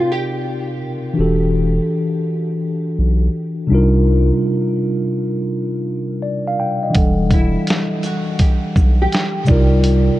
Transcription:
0.00 0.76 C3 medium
0.00 0.76 C4 medium
0.00 0.78 D#4 medium
0.00 0.12 F4 medium
0.00 0.78 F4 medium
0.00 0.79 A#4 medium
0.00 0.77 D5 medium
0.12 0.67 G4 medium
1.14 3.64 E3 medium
1.14 3.65 D4 medium
1.14 3.66 F#4 medium
1.19 1.79 E1 loud
1.19 3.67 G4 medium
1.19 3.68 A4 medium
2.99 3.29 B1 loud
3.67 6.54 C3 medium
3.67 6.54 G3 medium
3.67 6.55 D4 medium
3.71 4.32 C2 loud
3.71 6.56 D#4 medium
3.71 6.57 F4 medium
3.71 6.58 A#4 medium
6.22 6.45 D5 medium
6.47 6.59 F5 medium
6.60 6.82 G5 medium
6.83 7.18 D#5 medium
6.90 9.42 E3 medium
6.90 9.43 D4 medium
6.90 9.44 F#5 medium
6.95 7.57 E1 loud
6.95 9.45 G3 medium
6.95 9.45 A4 medium
6.95 kick loud
6.95 closed hi-hat medium
7.31 8.05 E4 medium
7.31 kick medium
7.31 closed hi-hat soft
7.31 shaker soft
7.67 snare loud
7.67 closed hi-hat medium
8.03 8.41 F#4 medium
8.03 closed hi-hat soft
8.03 shaker soft
8.39 8.97 G4 medium
8.39 kick medium
8.39 closed hi-hat medium
8.76 9.07 B1 loud
8.76 kick medium
8.76 shaker soft
9.02 9.82 G4 medium
9.13 snare loud
9.13 closed hi-hat medium
9.45 10.20 C3 medium
9.45 10.20 G3 medium
9.45 10.20 D5 medium
9.45 kick loud
9.45 shaker soft
9.49 10.10 C2 loud
9.49 10.20 D#4 medium
9.49 10.20 F4 medium
9.49 10.20 A#4 medium
9.84 closed hi-hat medium

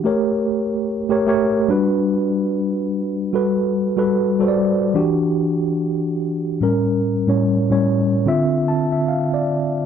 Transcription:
0.04 0.99 A3 medium
0.04 0.99 G4 medium
0.04 1.00 A#4 medium
0.04 1.00 C#5 medium
1.09 1.25 A3 medium
1.09 1.26 G4 medium
1.09 1.26 A#4 medium
1.09 1.26 C#5 medium
1.26 1.68 A3 medium
1.26 1.69 G4 medium
1.26 1.69 A#4 medium
1.26 1.70 C#5 loud
1.68 3.20 G3 medium
1.68 3.20 D4 medium
1.68 3.20 F#4 medium
1.68 3.21 B4 loud
3.33 3.91 G3 medium
3.33 3.92 F#4 medium
3.33 3.92 A4 medium
3.33 3.92 B4 medium
3.96 4.34 G3 medium
3.96 4.34 F#4 medium
3.96 4.35 A4 medium
3.96 4.35 B4 medium
4.39 4.97 G3 medium
4.39 4.95 F#4 medium
4.39 4.98 A4 medium
4.39 4.46 C5 medium
4.48 5.02 D5 medium
4.94 6.47 E3 medium
4.94 6.47 D4 medium
4.94 6.48 F#4 medium
4.94 6.48 G4 medium
6.61 7.19 A2 medium
6.61 7.20 G3 medium
6.61 7.20 C#4 medium
6.61 7.21 A#4 medium
7.27 7.63 A2 medium
7.27 7.64 G3 medium
7.27 7.64 C#4 medium
7.27 7.65 C#5 medium
7.70 8.27 A2 medium
7.70 8.27 G3 medium
7.70 8.28 C#4 medium
7.70 8.28 C#5 medium
8.26 9.77 D3 medium
8.26 9.77 C4 medium
8.26 9.78 F4 medium
8.26 8.91 E5 medium
8.68 8.90 A5 medium
8.92 9.08 E5 medium
9.08 9.31 F5 medium
9.34 9.86 D5 medium

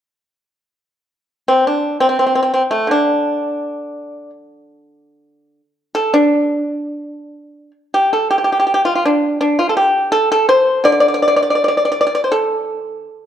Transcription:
1.48 1.66 C4 medium
1.67 1.96 D4 medium
2.00 2.08 C4 medium
2.09 2.17 C4 soft
2.19 2.25 C4 soft
2.27 2.34 C4 soft
2.35 2.41 C4 soft
2.43 2.52 C4 soft
2.54 2.62 C4 medium
2.71 2.89 A3 medium
2.87 5.60 D3 soft
2.87 4.30 D4 medium
5.95 6.12 A4 medium
6.14 7.71 D4 medium
7.94 8.10 G4 medium
8.13 8.29 A4 medium
8.31 8.37 G4 medium
8.38 8.43 G4 soft
8.44 8.51 G4 soft
8.52 8.58 G4 soft
8.60 8.65 G4 soft
8.67 8.73 G4 soft
8.74 8.81 G4 medium
8.85 8.94 F4 medium
8.95 9.03 F4 soft
9.05 9.38 D4 medium
9.41 9.57 D4 medium
9.59 9.69 F4 medium
9.69 9.76 A4 soft
9.77 10.10 G4 medium
10.12 10.29 A4 medium
10.32 10.48 A4 medium
10.49 10.82 C5 medium
10.84 13.08 D3 medium
10.84 10.91 D5 medium
10.92 10.99 D5 medium
11.00 11.06 D5 medium
11.08 11.13 D5 medium
11.14 11.20 D5 medium
11.22 11.27 D5 medium
11.28 11.34 D5 medium
11.36 11.41 D5 medium
11.43 11.49 D5 medium
11.50 11.54 D5 medium
11.55 11.62 D5 medium
11.64 11.67 D5 medium
11.68 11.76 D5 medium
11.77 11.84 D5 soft
11.85 11.90 D5 medium
11.92 11.99 D5 medium
12.01 12.05 D5 medium
12.07 12.14 D5 medium
12.15 12.22 D5 medium
12.24 12.31 C5 soft
12.32 13.26 A4 medium

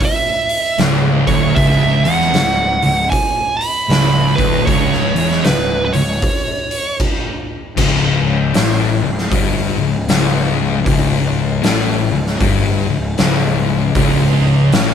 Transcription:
0.01 kick loud
0.01 open hi-hat medium
0.05 0.77 E5 medium
0.49 open hi-hat medium
0.78 1.24 C#1 loud
0.78 1.26 C#2 loud
0.78 snare loud
0.78 open hi-hat medium
1.27 1.55 D1 loud
1.27 1.56 D2 loud
1.27 1.55 C#5 medium
1.27 kick loud
1.27 open hi-hat medium
1.55 2.02 C#1 loud
1.55 2.04 C#2 loud
1.55 2.06 E5 medium
1.55 kick loud
1.55 open hi-hat medium
2.04 2.32 E1 loud
2.04 2.34 E2 loud
2.04 3.08 F#5 loud
2.04 open hi-hat medium
2.21 snare soft
2.34 2.80 C#1 medium
2.34 2.73 C#2 medium
2.34 snare loud
2.34 open hi-hat medium
2.82 3.10 C#1 medium
2.82 3.06 C#2 medium
2.82 open hi-hat medium
3.10 3.61 G#5 loud
3.10 kick loud
3.10 open hi-hat medium
3.57 4.39 B5 loud
3.61 open hi-hat medium
3.89 4.35 C#1 loud
3.89 4.37 C#2 loud
3.89 snare loud
3.89 open hi-hat medium
4.36 4.65 D1 medium
4.36 4.66 D2 loud
4.36 4.67 B4 medium
4.36 kick loud
4.36 open hi-hat medium
4.65 5.13 C#1 loud
4.65 5.14 C#2 loud
4.65 5.46 C#5 medium
4.65 kick loud
4.65 open hi-hat medium
4.93 snare soft
5.15 5.43 E1 medium
5.15 5.44 E2 loud
5.15 open hi-hat medium
5.32 snare soft
5.44 5.90 C#1 medium
5.44 5.84 C#2 medium
5.44 5.84 B4 medium
5.44 snare loud
5.44 open hi-hat medium
5.85 5.94 B4 medium
5.93 6.21 C#1 medium
5.93 6.17 C#2 medium
5.93 6.96 C#5 medium
5.93 open hi-hat medium
6.22 kick loud
6.22 open hi-hat medium
6.71 open hi-hat medium
7.00 kick loud
7.00 crash medium
7.77 8.51 C#1 loud
7.77 8.53 C#2 loud
7.77 kick loud
7.77 crash loud
8.54 9.00 A1 medium
8.54 9.01 A2 loud
8.54 snare loud
8.54 open hi-hat medium
9.03 9.30 C#1 medium
9.03 9.26 C#2 medium
9.18 snare soft
9.31 9.77 G1 loud
9.31 9.79 G2 loud
9.31 kick loud
9.31 open hi-hat medium
9.80 10.07 C#1 medium
9.80 10.03 C#2 medium
10.09 10.82 C#1 loud
10.09 10.84 C#2 loud
10.09 snare loud
10.09 open hi-hat medium
10.85 11.60 C#1 loud
10.85 11.62 C#2 loud
10.85 kick loud
10.85 open hi-hat medium
11.63 12.09 A1 loud
11.63 12.10 A2 loud
11.63 snare loud
11.63 open hi-hat medium
12.11 12.39 C#1 medium
12.11 12.35 C#2 medium
12.27 snare soft
12.40 12.86 G1 loud
12.40 12.88 G2 loud
12.40 kick loud
12.40 open hi-hat medium
12.89 13.16 C#1 medium
12.89 13.13 C#2 medium
13.18 13.92 C#1 loud
13.18 13.95 C#2 loud
13.18 snare loud
13.18 open hi-hat medium
13.95 14.69 C#1 loud
13.95 14.72 C#2 loud
13.95 kick loud
13.95 open hi-hat medium
14.72 14.94 A1 loud
14.72 14.94 A2 loud
14.72 snare loud
14.72 open hi-hat medium

